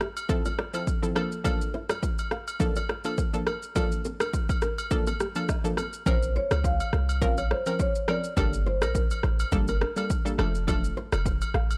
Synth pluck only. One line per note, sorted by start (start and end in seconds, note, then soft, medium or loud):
0.29 0.46 F3 medium
0.29 0.46 C4 medium
0.29 0.46 E4 medium
0.29 0.46 A4 loud
0.73 0.88 F3 medium
0.73 0.88 C4 medium
0.73 0.88 E4 medium
0.73 0.88 A4 medium
1.02 1.14 F3 medium
1.02 1.16 C4 medium
1.02 1.16 E4 medium
1.02 1.15 A4 medium
1.15 1.42 F3 medium
1.15 1.42 A#3 medium
1.15 1.43 D4 medium
1.15 1.43 A4 loud
1.44 1.98 F3 medium
1.44 1.98 A#3 medium
1.44 1.98 D4 medium
1.44 1.98 A4 loud
2.60 2.76 F3 medium
2.60 2.76 A#3 medium
2.60 2.77 D4 medium
2.60 2.77 A4 loud
3.05 3.18 F3 medium
3.05 3.19 A#3 medium
3.05 3.19 D4 medium
3.05 3.19 A4 medium
3.33 3.47 F3 medium
3.33 3.47 A#3 medium
3.33 3.47 D4 medium
3.33 3.48 A4 medium
3.75 4.29 F3 medium
3.75 4.29 A#3 medium
3.75 4.29 D4 medium
3.75 4.29 A4 loud
4.91 5.07 F3 medium
4.91 5.07 A#3 medium
4.91 5.07 D4 medium
4.91 5.08 A4 loud
5.35 5.49 F3 medium
5.35 5.49 A#3 medium
5.35 5.49 D4 medium
5.35 5.50 A4 medium
5.64 5.78 F3 medium
5.64 5.78 A#3 medium
5.64 5.78 D4 medium
5.64 5.78 A4 medium
6.06 6.60 F3 medium
6.06 6.60 C4 medium
6.06 6.60 C#4 medium
6.06 6.60 A#4 loud
7.21 7.38 F3 medium
7.21 7.38 C4 medium
7.21 7.38 C#4 medium
7.21 7.38 A#4 loud
7.66 7.80 F3 medium
7.66 7.80 C4 medium
7.66 7.80 C#4 medium
7.66 7.80 A#4 medium
8.08 8.24 F3 medium
8.08 8.25 C4 medium
8.08 8.25 C#4 medium
8.08 8.25 A#4 medium
8.37 8.90 G3 medium
8.37 8.91 A#3 medium
8.37 8.91 D4 medium
8.37 8.91 A4 loud
9.52 9.69 G3 medium
9.52 9.69 A#3 medium
9.52 9.69 D4 medium
9.52 9.69 A4 loud
9.96 10.11 G3 medium
9.96 10.11 A#3 medium
9.96 10.11 D4 medium
9.96 10.11 A4 medium
10.25 10.39 G3 medium
10.25 10.39 A#3 medium
10.25 10.37 D4 medium
10.25 10.38 A4 medium
10.38 10.65 F3 loud
10.38 10.65 A3 medium
10.38 10.66 D4 medium
10.38 10.66 A4 loud
10.67 11.21 F3 medium
10.67 11.21 A3 medium
10.67 11.21 D4 medium
10.67 11.21 A4 loud